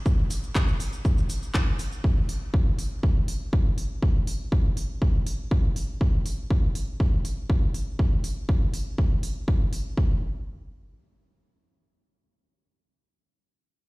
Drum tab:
HH |--o---o---o---o-|--o---o---o---o-|--o---o---o---o-|--o---o---o---o-|
SH |x-xxxxxxxxxxx-xx|----------------|----------------|----------------|
CP |----x-------x---|----------------|----------------|----------------|
BD |o---o---o---o---|o---o---o---o---|o---o---o---o---|o---o---o---o---|

HH |--o---o---o---o-|----------------|----------------|
SH |----------------|----------------|----------------|
CP |----------------|----------------|----------------|
BD |o---o---o---o---|o---------------|----------------|